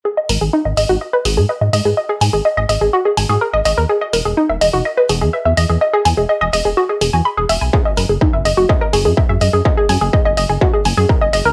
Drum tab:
HH |-o-o-o-o|-o-o-o-o|-o-o-o-o|-o-o-o-o|
BD |--------|--------|--------|--------|

HH |-o-o-o-o|-o-o-o-o|
BD |o-o-o-o-|o-o-o-o-|